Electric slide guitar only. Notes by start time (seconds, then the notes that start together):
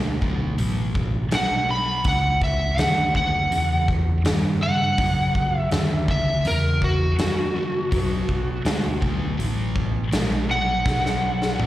1.35 F#5
1.71 B5
2.08 F#5
2.44 E5
2.79 F#5
3.17 F#5
4.63 F#5
5.60 E5
6.11 E5
6.47 A#4
6.84 F#4
10.51 F#5